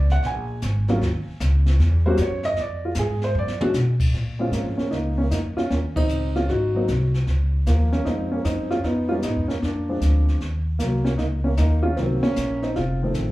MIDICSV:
0, 0, Header, 1, 5, 480
1, 0, Start_track
1, 0, Tempo, 391389
1, 1239, Time_signature, 4, 2, 24, 8
1, 16331, End_track
2, 0, Start_track
2, 0, Title_t, "Upright piano"
2, 0, Program_c, 0, 0
2, 0, Note_on_c, 0, 74, 86
2, 129, Note_off_c, 0, 74, 0
2, 144, Note_on_c, 0, 78, 94
2, 289, Note_off_c, 0, 78, 0
2, 323, Note_on_c, 0, 80, 84
2, 1087, Note_on_c, 0, 54, 78
2, 1098, Note_on_c, 0, 58, 71
2, 1099, Note_on_c, 0, 61, 76
2, 1102, Note_on_c, 0, 65, 85
2, 1227, Note_off_c, 0, 54, 0
2, 1233, Note_off_c, 0, 58, 0
2, 1234, Note_off_c, 0, 61, 0
2, 1235, Note_off_c, 0, 65, 0
2, 1689, Note_off_c, 0, 80, 0
2, 2525, Note_on_c, 0, 72, 93
2, 2528, Note_on_c, 0, 55, 83
2, 2531, Note_on_c, 0, 58, 74
2, 2541, Note_on_c, 0, 61, 73
2, 2546, Note_on_c, 0, 66, 96
2, 2667, Note_off_c, 0, 55, 0
2, 2668, Note_off_c, 0, 58, 0
2, 2673, Note_off_c, 0, 61, 0
2, 2676, Note_off_c, 0, 66, 0
2, 2677, Note_off_c, 0, 72, 0
2, 2713, Note_on_c, 0, 73, 85
2, 3002, Note_off_c, 0, 73, 0
2, 3005, Note_on_c, 0, 75, 125
2, 3156, Note_off_c, 0, 75, 0
2, 3189, Note_on_c, 0, 74, 89
2, 3480, Note_off_c, 0, 74, 0
2, 3496, Note_on_c, 0, 65, 74
2, 3642, Note_off_c, 0, 65, 0
2, 3667, Note_on_c, 0, 68, 91
2, 3959, Note_off_c, 0, 68, 0
2, 3973, Note_on_c, 0, 72, 98
2, 4120, Note_off_c, 0, 72, 0
2, 4153, Note_on_c, 0, 74, 98
2, 4425, Note_on_c, 0, 56, 73
2, 4434, Note_on_c, 0, 61, 69
2, 4434, Note_on_c, 0, 62, 64
2, 4442, Note_off_c, 0, 74, 0
2, 4444, Note_on_c, 0, 66, 99
2, 4538, Note_off_c, 0, 66, 0
2, 4574, Note_off_c, 0, 56, 0
2, 4579, Note_off_c, 0, 61, 0
2, 4579, Note_off_c, 0, 62, 0
2, 5385, Note_on_c, 0, 56, 64
2, 5393, Note_on_c, 0, 60, 59
2, 5397, Note_on_c, 0, 61, 61
2, 5405, Note_on_c, 0, 65, 70
2, 5542, Note_on_c, 0, 58, 69
2, 5567, Note_on_c, 0, 53, 54
2, 5615, Note_off_c, 0, 58, 0
2, 5637, Note_off_c, 0, 53, 0
2, 5839, Note_off_c, 0, 61, 0
2, 5857, Note_on_c, 0, 61, 74
2, 5887, Note_on_c, 0, 58, 55
2, 6000, Note_off_c, 0, 56, 0
2, 6004, Note_off_c, 0, 60, 0
2, 6010, Note_off_c, 0, 65, 0
2, 6016, Note_off_c, 0, 61, 0
2, 6017, Note_on_c, 0, 63, 76
2, 6029, Note_off_c, 0, 58, 0
2, 6047, Note_on_c, 0, 58, 60
2, 6338, Note_off_c, 0, 58, 0
2, 6352, Note_on_c, 0, 61, 76
2, 6355, Note_off_c, 0, 63, 0
2, 6383, Note_on_c, 0, 58, 58
2, 6413, Note_off_c, 0, 61, 0
2, 6444, Note_off_c, 0, 58, 0
2, 6509, Note_on_c, 0, 63, 83
2, 6532, Note_on_c, 0, 58, 61
2, 6582, Note_off_c, 0, 63, 0
2, 6602, Note_off_c, 0, 58, 0
2, 6828, Note_on_c, 0, 65, 85
2, 6848, Note_on_c, 0, 61, 68
2, 6976, Note_off_c, 0, 61, 0
2, 6983, Note_off_c, 0, 65, 0
2, 6995, Note_on_c, 0, 61, 79
2, 7013, Note_on_c, 0, 58, 61
2, 7067, Note_off_c, 0, 61, 0
2, 7083, Note_off_c, 0, 58, 0
2, 7309, Note_on_c, 0, 63, 108
2, 7323, Note_on_c, 0, 60, 74
2, 7767, Note_off_c, 0, 60, 0
2, 7797, Note_on_c, 0, 65, 85
2, 7807, Note_on_c, 0, 61, 65
2, 7808, Note_off_c, 0, 63, 0
2, 7949, Note_off_c, 0, 65, 0
2, 7954, Note_off_c, 0, 61, 0
2, 7966, Note_on_c, 0, 66, 83
2, 7974, Note_on_c, 0, 63, 63
2, 8273, Note_off_c, 0, 63, 0
2, 8276, Note_on_c, 0, 54, 70
2, 8285, Note_on_c, 0, 58, 58
2, 8289, Note_on_c, 0, 60, 64
2, 8292, Note_on_c, 0, 63, 72
2, 8424, Note_off_c, 0, 54, 0
2, 8428, Note_off_c, 0, 58, 0
2, 8431, Note_off_c, 0, 60, 0
2, 8432, Note_off_c, 0, 63, 0
2, 8713, Note_off_c, 0, 66, 0
2, 9404, Note_on_c, 0, 58, 74
2, 9414, Note_on_c, 0, 53, 61
2, 9705, Note_off_c, 0, 53, 0
2, 9720, Note_on_c, 0, 61, 85
2, 9721, Note_off_c, 0, 58, 0
2, 9740, Note_on_c, 0, 58, 62
2, 9871, Note_on_c, 0, 63, 82
2, 9872, Note_off_c, 0, 61, 0
2, 9882, Note_off_c, 0, 58, 0
2, 9887, Note_on_c, 0, 53, 58
2, 9891, Note_on_c, 0, 60, 65
2, 9893, Note_on_c, 0, 56, 54
2, 10173, Note_off_c, 0, 63, 0
2, 10183, Note_off_c, 0, 60, 0
2, 10200, Note_on_c, 0, 61, 75
2, 10221, Note_on_c, 0, 58, 61
2, 10352, Note_off_c, 0, 61, 0
2, 10358, Note_on_c, 0, 63, 86
2, 10363, Note_off_c, 0, 58, 0
2, 10383, Note_on_c, 0, 60, 64
2, 10620, Note_off_c, 0, 53, 0
2, 10623, Note_off_c, 0, 56, 0
2, 10670, Note_off_c, 0, 60, 0
2, 10677, Note_on_c, 0, 65, 94
2, 10689, Note_off_c, 0, 63, 0
2, 10702, Note_on_c, 0, 61, 68
2, 10837, Note_on_c, 0, 63, 86
2, 10844, Note_off_c, 0, 61, 0
2, 10847, Note_off_c, 0, 65, 0
2, 10861, Note_on_c, 0, 59, 70
2, 11145, Note_on_c, 0, 65, 92
2, 11149, Note_off_c, 0, 59, 0
2, 11164, Note_off_c, 0, 63, 0
2, 11167, Note_on_c, 0, 55, 61
2, 11168, Note_on_c, 0, 56, 53
2, 11173, Note_on_c, 0, 61, 72
2, 11179, Note_on_c, 0, 59, 54
2, 11183, Note_on_c, 0, 63, 67
2, 11206, Note_off_c, 0, 65, 0
2, 11234, Note_off_c, 0, 61, 0
2, 11305, Note_off_c, 0, 63, 0
2, 11311, Note_off_c, 0, 55, 0
2, 11311, Note_off_c, 0, 56, 0
2, 11317, Note_off_c, 0, 59, 0
2, 11323, Note_on_c, 0, 63, 87
2, 11341, Note_on_c, 0, 59, 66
2, 11629, Note_off_c, 0, 59, 0
2, 11629, Note_on_c, 0, 61, 78
2, 11651, Note_off_c, 0, 63, 0
2, 11659, Note_on_c, 0, 58, 63
2, 11690, Note_off_c, 0, 61, 0
2, 11720, Note_off_c, 0, 58, 0
2, 11802, Note_on_c, 0, 62, 72
2, 11832, Note_on_c, 0, 58, 55
2, 12126, Note_off_c, 0, 62, 0
2, 12126, Note_on_c, 0, 53, 60
2, 12135, Note_on_c, 0, 56, 56
2, 12137, Note_on_c, 0, 60, 57
2, 12144, Note_on_c, 0, 62, 68
2, 12567, Note_off_c, 0, 58, 0
2, 12734, Note_off_c, 0, 53, 0
2, 12739, Note_off_c, 0, 56, 0
2, 12739, Note_off_c, 0, 60, 0
2, 12743, Note_off_c, 0, 62, 0
2, 13230, Note_on_c, 0, 58, 78
2, 13264, Note_on_c, 0, 54, 59
2, 13547, Note_on_c, 0, 61, 83
2, 13550, Note_off_c, 0, 54, 0
2, 13553, Note_off_c, 0, 58, 0
2, 13571, Note_on_c, 0, 58, 64
2, 13609, Note_off_c, 0, 61, 0
2, 13633, Note_off_c, 0, 58, 0
2, 13706, Note_on_c, 0, 63, 82
2, 13733, Note_on_c, 0, 58, 67
2, 13779, Note_off_c, 0, 63, 0
2, 13803, Note_off_c, 0, 58, 0
2, 14032, Note_on_c, 0, 61, 80
2, 14057, Note_on_c, 0, 58, 62
2, 14093, Note_off_c, 0, 61, 0
2, 14118, Note_off_c, 0, 58, 0
2, 14194, Note_on_c, 0, 63, 85
2, 14215, Note_on_c, 0, 58, 66
2, 14503, Note_on_c, 0, 65, 95
2, 14505, Note_off_c, 0, 58, 0
2, 14525, Note_on_c, 0, 61, 73
2, 14526, Note_off_c, 0, 63, 0
2, 14672, Note_on_c, 0, 60, 84
2, 14674, Note_off_c, 0, 61, 0
2, 14680, Note_off_c, 0, 65, 0
2, 14692, Note_off_c, 0, 60, 0
2, 14692, Note_on_c, 0, 54, 65
2, 14694, Note_on_c, 0, 51, 61
2, 14708, Note_on_c, 0, 58, 54
2, 14711, Note_on_c, 0, 60, 63
2, 14974, Note_off_c, 0, 51, 0
2, 14981, Note_off_c, 0, 58, 0
2, 14982, Note_off_c, 0, 60, 0
2, 14983, Note_off_c, 0, 54, 0
2, 14997, Note_on_c, 0, 61, 110
2, 15024, Note_on_c, 0, 58, 71
2, 15459, Note_off_c, 0, 58, 0
2, 15480, Note_on_c, 0, 63, 82
2, 15492, Note_off_c, 0, 61, 0
2, 15493, Note_on_c, 0, 60, 68
2, 15635, Note_off_c, 0, 60, 0
2, 15647, Note_off_c, 0, 63, 0
2, 15648, Note_on_c, 0, 65, 77
2, 15654, Note_on_c, 0, 60, 59
2, 15972, Note_on_c, 0, 51, 63
2, 15979, Note_off_c, 0, 60, 0
2, 15982, Note_on_c, 0, 53, 59
2, 15992, Note_on_c, 0, 57, 59
2, 15997, Note_on_c, 0, 60, 70
2, 16331, Note_off_c, 0, 51, 0
2, 16331, Note_off_c, 0, 53, 0
2, 16331, Note_off_c, 0, 57, 0
2, 16331, Note_off_c, 0, 60, 0
2, 16331, Note_off_c, 0, 65, 0
2, 16331, End_track
3, 0, Start_track
3, 0, Title_t, "Upright bass"
3, 0, Program_c, 1, 32
3, 0, Note_on_c, 1, 37, 91
3, 267, Note_off_c, 1, 37, 0
3, 279, Note_on_c, 1, 34, 91
3, 744, Note_off_c, 1, 34, 0
3, 766, Note_on_c, 1, 32, 93
3, 1228, Note_off_c, 1, 32, 0
3, 1243, Note_on_c, 1, 39, 91
3, 1535, Note_off_c, 1, 39, 0
3, 1721, Note_on_c, 1, 37, 104
3, 2184, Note_off_c, 1, 37, 0
3, 2196, Note_on_c, 1, 40, 93
3, 2661, Note_off_c, 1, 40, 0
3, 2679, Note_on_c, 1, 42, 95
3, 3142, Note_off_c, 1, 42, 0
3, 3150, Note_on_c, 1, 41, 89
3, 3618, Note_off_c, 1, 41, 0
3, 3632, Note_on_c, 1, 44, 103
3, 4099, Note_off_c, 1, 44, 0
3, 4106, Note_on_c, 1, 42, 94
3, 4576, Note_off_c, 1, 42, 0
3, 4581, Note_on_c, 1, 47, 93
3, 5054, Note_off_c, 1, 47, 0
3, 5069, Note_on_c, 1, 46, 76
3, 5528, Note_off_c, 1, 46, 0
3, 5536, Note_on_c, 1, 44, 80
3, 5840, Note_off_c, 1, 44, 0
3, 6025, Note_on_c, 1, 37, 77
3, 6497, Note_off_c, 1, 37, 0
3, 6514, Note_on_c, 1, 41, 80
3, 6811, Note_off_c, 1, 41, 0
3, 6997, Note_on_c, 1, 39, 77
3, 7464, Note_off_c, 1, 39, 0
3, 7475, Note_on_c, 1, 37, 83
3, 7944, Note_off_c, 1, 37, 0
3, 7957, Note_on_c, 1, 32, 79
3, 8425, Note_off_c, 1, 32, 0
3, 8441, Note_on_c, 1, 36, 82
3, 8908, Note_off_c, 1, 36, 0
3, 8918, Note_on_c, 1, 37, 83
3, 9387, Note_off_c, 1, 37, 0
3, 9400, Note_on_c, 1, 39, 86
3, 9867, Note_off_c, 1, 39, 0
3, 9883, Note_on_c, 1, 41, 79
3, 10349, Note_off_c, 1, 41, 0
3, 10362, Note_on_c, 1, 42, 82
3, 10829, Note_off_c, 1, 42, 0
3, 10836, Note_on_c, 1, 41, 77
3, 11306, Note_off_c, 1, 41, 0
3, 11330, Note_on_c, 1, 44, 82
3, 11483, Note_on_c, 1, 41, 53
3, 11502, Note_off_c, 1, 44, 0
3, 11632, Note_off_c, 1, 41, 0
3, 11639, Note_on_c, 1, 39, 56
3, 11791, Note_off_c, 1, 39, 0
3, 11804, Note_on_c, 1, 41, 77
3, 12270, Note_off_c, 1, 41, 0
3, 12280, Note_on_c, 1, 38, 78
3, 12748, Note_off_c, 1, 38, 0
3, 12764, Note_on_c, 1, 39, 76
3, 13230, Note_off_c, 1, 39, 0
3, 13248, Note_on_c, 1, 36, 88
3, 13712, Note_off_c, 1, 36, 0
3, 13725, Note_on_c, 1, 37, 78
3, 14190, Note_off_c, 1, 37, 0
3, 14201, Note_on_c, 1, 39, 79
3, 14667, Note_off_c, 1, 39, 0
3, 14682, Note_on_c, 1, 36, 78
3, 14978, Note_off_c, 1, 36, 0
3, 15168, Note_on_c, 1, 34, 84
3, 15630, Note_off_c, 1, 34, 0
3, 15652, Note_on_c, 1, 29, 82
3, 16111, Note_off_c, 1, 29, 0
3, 16121, Note_on_c, 1, 33, 85
3, 16331, Note_off_c, 1, 33, 0
3, 16331, End_track
4, 0, Start_track
4, 0, Title_t, "Muted upright bass strokes"
4, 1558, Note_on_c, 9, 29, 44
4, 1681, Note_off_c, 9, 29, 0
4, 5869, Note_on_c, 9, 29, 35
4, 5991, Note_off_c, 9, 29, 0
4, 6825, Note_on_c, 9, 29, 39
4, 6948, Note_off_c, 9, 29, 0
4, 15001, Note_on_c, 9, 29, 38
4, 15124, Note_off_c, 9, 29, 0
4, 16331, End_track
5, 0, Start_track
5, 0, Title_t, "Drums"
5, 119, Note_on_c, 9, 38, 45
5, 241, Note_off_c, 9, 38, 0
5, 285, Note_on_c, 9, 25, 49
5, 285, Note_on_c, 9, 38, 51
5, 408, Note_off_c, 9, 38, 0
5, 757, Note_on_c, 9, 44, 57
5, 762, Note_on_c, 9, 38, 70
5, 880, Note_off_c, 9, 44, 0
5, 884, Note_off_c, 9, 38, 0
5, 1081, Note_on_c, 9, 38, 48
5, 1204, Note_off_c, 9, 38, 0
5, 1249, Note_off_c, 9, 25, 0
5, 1249, Note_on_c, 9, 25, 52
5, 1249, Note_on_c, 9, 38, 54
5, 1372, Note_off_c, 9, 38, 0
5, 1719, Note_on_c, 9, 44, 60
5, 1723, Note_on_c, 9, 38, 72
5, 1841, Note_off_c, 9, 44, 0
5, 1846, Note_off_c, 9, 38, 0
5, 2038, Note_on_c, 9, 38, 46
5, 2161, Note_off_c, 9, 38, 0
5, 2205, Note_off_c, 9, 25, 0
5, 2205, Note_on_c, 9, 25, 48
5, 2205, Note_on_c, 9, 38, 54
5, 2327, Note_off_c, 9, 38, 0
5, 2662, Note_on_c, 9, 44, 63
5, 2667, Note_on_c, 9, 38, 75
5, 2785, Note_off_c, 9, 44, 0
5, 2790, Note_off_c, 9, 38, 0
5, 2981, Note_on_c, 9, 38, 49
5, 3104, Note_off_c, 9, 38, 0
5, 3144, Note_off_c, 9, 25, 0
5, 3144, Note_on_c, 9, 25, 54
5, 3144, Note_on_c, 9, 38, 52
5, 3266, Note_off_c, 9, 38, 0
5, 3614, Note_on_c, 9, 44, 69
5, 3619, Note_on_c, 9, 38, 76
5, 3736, Note_off_c, 9, 44, 0
5, 3741, Note_off_c, 9, 38, 0
5, 3943, Note_on_c, 9, 38, 46
5, 4066, Note_off_c, 9, 38, 0
5, 4268, Note_on_c, 9, 38, 67
5, 4390, Note_off_c, 9, 38, 0
5, 4425, Note_on_c, 9, 47, 92
5, 4547, Note_off_c, 9, 47, 0
5, 4585, Note_on_c, 9, 44, 59
5, 4590, Note_on_c, 9, 38, 65
5, 4708, Note_off_c, 9, 44, 0
5, 4713, Note_off_c, 9, 38, 0
5, 4904, Note_on_c, 9, 36, 81
5, 4907, Note_on_c, 9, 49, 93
5, 5026, Note_off_c, 9, 36, 0
5, 5029, Note_off_c, 9, 49, 0
5, 5075, Note_off_c, 9, 25, 0
5, 5075, Note_on_c, 9, 25, 50
5, 5075, Note_on_c, 9, 38, 41
5, 5198, Note_off_c, 9, 38, 0
5, 5548, Note_on_c, 9, 44, 49
5, 5553, Note_on_c, 9, 38, 54
5, 5670, Note_off_c, 9, 44, 0
5, 5675, Note_off_c, 9, 38, 0
5, 5873, Note_on_c, 9, 38, 37
5, 5996, Note_off_c, 9, 38, 0
5, 6033, Note_off_c, 9, 25, 0
5, 6033, Note_on_c, 9, 25, 45
5, 6033, Note_on_c, 9, 38, 38
5, 6156, Note_off_c, 9, 38, 0
5, 6512, Note_on_c, 9, 44, 54
5, 6517, Note_on_c, 9, 38, 55
5, 6635, Note_off_c, 9, 44, 0
5, 6640, Note_off_c, 9, 38, 0
5, 6841, Note_on_c, 9, 38, 37
5, 6963, Note_off_c, 9, 38, 0
5, 6995, Note_off_c, 9, 25, 0
5, 6995, Note_on_c, 9, 25, 43
5, 6995, Note_on_c, 9, 38, 41
5, 7118, Note_off_c, 9, 38, 0
5, 7312, Note_on_c, 9, 36, 76
5, 7314, Note_on_c, 9, 51, 70
5, 7435, Note_off_c, 9, 36, 0
5, 7437, Note_off_c, 9, 51, 0
5, 7467, Note_on_c, 9, 44, 63
5, 7589, Note_off_c, 9, 44, 0
5, 7798, Note_on_c, 9, 38, 38
5, 7920, Note_off_c, 9, 38, 0
5, 7957, Note_off_c, 9, 25, 0
5, 7957, Note_on_c, 9, 25, 40
5, 7957, Note_on_c, 9, 38, 39
5, 8080, Note_off_c, 9, 38, 0
5, 8435, Note_on_c, 9, 44, 47
5, 8440, Note_on_c, 9, 38, 57
5, 8558, Note_off_c, 9, 44, 0
5, 8562, Note_off_c, 9, 38, 0
5, 8756, Note_on_c, 9, 38, 37
5, 8879, Note_off_c, 9, 38, 0
5, 8915, Note_off_c, 9, 25, 0
5, 8915, Note_on_c, 9, 25, 44
5, 8915, Note_on_c, 9, 38, 41
5, 9037, Note_off_c, 9, 38, 0
5, 9397, Note_on_c, 9, 44, 55
5, 9402, Note_on_c, 9, 38, 59
5, 9520, Note_off_c, 9, 44, 0
5, 9525, Note_off_c, 9, 38, 0
5, 9720, Note_on_c, 9, 38, 38
5, 9842, Note_off_c, 9, 38, 0
5, 9883, Note_off_c, 9, 25, 0
5, 9883, Note_on_c, 9, 25, 44
5, 9883, Note_on_c, 9, 38, 40
5, 10005, Note_off_c, 9, 38, 0
5, 10357, Note_on_c, 9, 44, 54
5, 10362, Note_on_c, 9, 38, 55
5, 10480, Note_off_c, 9, 44, 0
5, 10485, Note_off_c, 9, 38, 0
5, 10679, Note_on_c, 9, 38, 38
5, 10802, Note_off_c, 9, 38, 0
5, 10841, Note_off_c, 9, 25, 0
5, 10841, Note_on_c, 9, 25, 47
5, 10841, Note_on_c, 9, 38, 43
5, 10963, Note_off_c, 9, 38, 0
5, 11311, Note_on_c, 9, 44, 61
5, 11316, Note_on_c, 9, 38, 59
5, 11433, Note_off_c, 9, 44, 0
5, 11438, Note_off_c, 9, 38, 0
5, 11644, Note_on_c, 9, 38, 37
5, 11767, Note_off_c, 9, 38, 0
5, 11807, Note_off_c, 9, 25, 0
5, 11807, Note_on_c, 9, 25, 44
5, 11807, Note_on_c, 9, 38, 41
5, 11930, Note_off_c, 9, 38, 0
5, 12281, Note_on_c, 9, 44, 61
5, 12285, Note_on_c, 9, 38, 56
5, 12403, Note_off_c, 9, 44, 0
5, 12408, Note_off_c, 9, 38, 0
5, 12610, Note_on_c, 9, 38, 36
5, 12733, Note_off_c, 9, 38, 0
5, 12760, Note_off_c, 9, 25, 0
5, 12760, Note_on_c, 9, 25, 48
5, 12760, Note_on_c, 9, 38, 40
5, 12882, Note_off_c, 9, 38, 0
5, 13238, Note_on_c, 9, 44, 53
5, 13243, Note_on_c, 9, 38, 54
5, 13360, Note_off_c, 9, 44, 0
5, 13365, Note_off_c, 9, 38, 0
5, 13555, Note_on_c, 9, 38, 38
5, 13678, Note_off_c, 9, 38, 0
5, 13715, Note_off_c, 9, 25, 0
5, 13715, Note_on_c, 9, 25, 44
5, 13715, Note_on_c, 9, 38, 41
5, 13838, Note_off_c, 9, 38, 0
5, 14191, Note_on_c, 9, 44, 58
5, 14196, Note_on_c, 9, 38, 57
5, 14314, Note_off_c, 9, 44, 0
5, 14319, Note_off_c, 9, 38, 0
5, 14679, Note_off_c, 9, 25, 0
5, 14679, Note_on_c, 9, 25, 46
5, 14679, Note_on_c, 9, 38, 42
5, 14801, Note_off_c, 9, 38, 0
5, 14997, Note_on_c, 9, 38, 35
5, 15120, Note_off_c, 9, 38, 0
5, 15159, Note_on_c, 9, 44, 55
5, 15163, Note_on_c, 9, 38, 60
5, 15281, Note_off_c, 9, 44, 0
5, 15286, Note_off_c, 9, 38, 0
5, 15483, Note_on_c, 9, 38, 36
5, 15606, Note_off_c, 9, 38, 0
5, 15645, Note_off_c, 9, 25, 0
5, 15645, Note_on_c, 9, 25, 52
5, 15645, Note_on_c, 9, 38, 41
5, 15767, Note_off_c, 9, 38, 0
5, 16115, Note_on_c, 9, 44, 55
5, 16119, Note_on_c, 9, 38, 56
5, 16237, Note_off_c, 9, 44, 0
5, 16242, Note_off_c, 9, 38, 0
5, 16331, Note_off_c, 9, 25, 0
5, 16331, End_track
0, 0, End_of_file